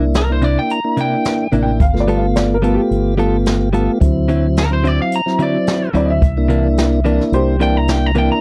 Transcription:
0.00 0.56 C2 loud
0.00 0.23 A#3 medium
0.00 0.23 D4 medium
0.00 0.23 E4 medium
0.14 0.30 A#4 medium
0.14 snare loud
0.14 closed hi-hat medium
0.30 0.80 A#3 medium
0.30 0.80 D4 medium
0.30 0.80 E4 medium
0.30 0.44 C5 medium
0.42 0.59 C3 medium
0.42 0.59 A#3 medium
0.42 0.60 D4 medium
0.42 0.60 E4 medium
0.42 0.57 D5 medium
0.42 closed hi-hat medium
0.59 0.70 G5 medium
0.70 0.97 A#5 medium
0.70 closed hi-hat medium
0.84 1.47 A#3 medium
0.84 1.48 D4 medium
0.84 1.47 E4 medium
0.97 1.14 C3 medium
0.97 1.15 A#3 medium
0.97 1.15 D4 medium
0.97 1.15 E4 medium
0.97 1.53 G5 medium
0.97 closed hi-hat medium
1.25 snare loud
1.25 closed hi-hat medium
1.51 1.77 A1 medium
1.51 1.70 C3 medium
1.51 1.80 A#3 medium
1.51 1.70 A#3 medium
1.51 1.80 D4 medium
1.51 1.70 D4 medium
1.51 1.80 E4 medium
1.51 1.71 E4 medium
1.51 closed hi-hat medium
1.63 1.80 G5 medium
1.80 2.77 G1 medium
1.80 1.99 F5 medium
1.80 kick loud
1.80 closed hi-hat medium
1.94 2.57 A3 medium
1.94 2.58 B3 medium
1.94 2.58 F4 loud
1.94 snare soft
2.00 2.17 D5 medium
2.08 2.25 G3 medium
2.08 2.25 B3 medium
2.08 2.26 F4 medium
2.08 2.26 A4 medium
2.08 closed hi-hat medium
2.17 2.35 F5 medium
2.36 2.53 D5 medium
2.36 snare loud
2.36 closed hi-hat medium
2.54 2.72 A#4 medium
2.62 2.80 G3 medium
2.62 3.14 A3 medium
2.62 2.80 B3 medium
2.62 3.15 B3 medium
2.62 2.81 F4 medium
2.62 3.15 F4 loud
2.62 2.81 A4 medium
2.62 closed hi-hat medium
2.74 3.98 G4 medium
2.91 3.88 G1 medium
2.91 closed hi-hat medium
3.18 3.35 G3 medium
3.18 3.69 A3 medium
3.18 3.69 B3 medium
3.18 3.36 B3 medium
3.18 3.69 F4 medium
3.18 3.36 F4 medium
3.18 3.36 A4 medium
3.18 closed hi-hat medium
3.46 snare loud
3.46 closed hi-hat medium
3.73 3.90 G3 medium
3.73 3.99 A3 medium
3.73 3.99 B3 medium
3.73 3.91 B3 medium
3.73 3.99 F4 loud
3.73 3.91 F4 medium
3.73 3.91 A4 medium
3.73 closed hi-hat medium
4.00 4.98 D2 medium
4.00 4.65 F#3 medium
4.00 4.65 C4 medium
4.00 4.65 E4 medium
4.00 kick loud
4.00 closed hi-hat medium
4.28 4.46 D3 medium
4.28 4.46 F#3 medium
4.28 4.46 C4 medium
4.28 4.47 E4 medium
4.28 closed hi-hat medium
4.57 4.72 A#4 medium
4.57 snare loud
4.57 closed hi-hat medium
4.70 5.21 F#3 medium
4.70 5.21 C4 medium
4.70 5.22 E4 medium
4.70 4.87 C5 medium
4.84 5.01 D3 medium
4.84 5.01 F#3 medium
4.84 5.02 C4 medium
4.84 5.02 E4 medium
4.84 5.00 D5 medium
4.84 closed hi-hat medium
5.02 5.13 F5 medium
5.12 5.40 A#5 medium
5.12 closed hi-hat medium
5.26 5.89 F#3 medium
5.26 5.89 C4 medium
5.26 5.89 E4 medium
5.26 snare soft
5.39 5.56 D3 medium
5.39 5.56 F#3 medium
5.39 5.57 C4 medium
5.39 5.57 E4 medium
5.39 5.95 D5 medium
5.39 closed hi-hat medium
5.67 snare loud
5.67 closed hi-hat medium
5.94 6.19 D2 medium
5.94 6.11 D3 medium
5.94 6.12 F#3 medium
5.94 6.22 F#3 medium
5.94 6.22 C4 medium
5.94 6.12 C4 medium
5.94 6.22 E4 medium
5.94 6.12 E4 medium
5.94 6.09 D5 medium
5.94 closed hi-hat medium
6.06 6.09 D#5 medium
6.10 7.29 E5 medium
6.22 7.19 C2 medium
6.22 kick loud
6.22 closed hi-hat medium
6.37 7.00 A#3 medium
6.37 7.00 D4 medium
6.37 7.00 E4 loud
6.49 6.66 C3 medium
6.49 6.67 E3 medium
6.49 6.67 A#3 medium
6.49 6.67 D4 medium
6.49 closed hi-hat medium
6.77 snare loud
6.77 closed hi-hat medium
7.04 7.22 C3 medium
7.04 7.22 E3 medium
7.04 7.56 A#3 medium
7.04 7.23 A#3 medium
7.04 7.56 D4 medium
7.04 7.23 D4 medium
7.04 7.56 E4 medium
7.04 closed hi-hat medium
7.21 snare soft
7.32 8.29 C2 medium
7.32 7.59 G4 medium
7.32 7.60 C5 medium
7.32 closed hi-hat medium
7.60 7.77 C3 medium
7.60 7.78 E3 medium
7.60 8.12 A#3 medium
7.60 7.78 A#3 medium
7.60 8.12 D4 medium
7.60 7.78 D4 medium
7.60 8.12 E4 medium
7.60 7.77 G5 medium
7.60 closed hi-hat medium
7.77 7.90 A#5 medium
7.88 8.06 G5 medium
7.88 snare loud
7.88 closed hi-hat medium
8.06 8.17 A#5 medium
8.15 8.32 C3 medium
8.15 8.33 E3 medium
8.15 8.41 A#3 medium
8.15 8.33 A#3 medium
8.15 8.41 D4 medium
8.15 8.33 D4 medium
8.15 8.41 E4 medium
8.15 8.31 G5 medium
8.15 closed hi-hat medium
8.32 8.41 A#5 medium

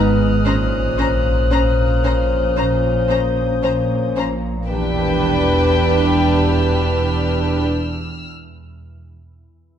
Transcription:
0.00 0.32 G#1 soft
0.00 0.45 G#1 medium
0.00 0.32 G#2 medium
0.00 0.41 B3 medium
0.00 0.41 B4 medium
0.00 4.12 D#6 soft
0.00 3.05 F6 soft
0.00 2.69 F#6 soft
0.45 1.38 A#1 soft
0.45 4.69 A#1 medium
0.45 1.38 A#2 soft
0.45 0.53 C#4 soft
0.45 4.33 C#4 soft
0.45 4.33 C5 soft
0.45 0.54 C5 soft
0.45 0.53 A#5 soft
0.98 1.06 C#4 soft
0.98 1.06 C5 soft
0.98 1.06 A#5 soft
1.51 2.44 A#1 soft
1.51 2.44 A#2 soft
1.51 1.59 C#4 soft
1.51 1.59 C5 soft
1.51 1.60 A#5 soft
2.04 2.12 C#4 soft
2.04 2.13 C5 soft
2.04 2.13 A#5 soft
2.56 3.50 A#1 soft
2.56 3.50 A#2 soft
2.56 2.64 C#4 soft
2.56 2.65 C5 soft
2.56 2.65 A#5 soft
2.69 4.12 G6 soft
3.09 3.18 C#4 soft
3.09 3.17 C5 soft
3.09 3.18 A#5 soft
3.63 4.57 A#1 soft
3.63 4.57 A#2 soft
3.63 3.71 C#4 soft
3.63 3.71 C5 soft
3.63 3.71 A#5 soft
4.16 4.24 C#4 soft
4.16 4.24 C5 soft
4.16 4.26 A#5 soft
4.68 7.66 E1 soft
4.68 7.67 E2 medium
4.68 7.67 E2 soft
4.68 7.67 D4 soft
4.68 7.67 G4 soft
4.68 7.65 B4 soft
4.68 7.66 G5 soft
4.68 8.28 E6 soft
5.74 8.28 F6 soft

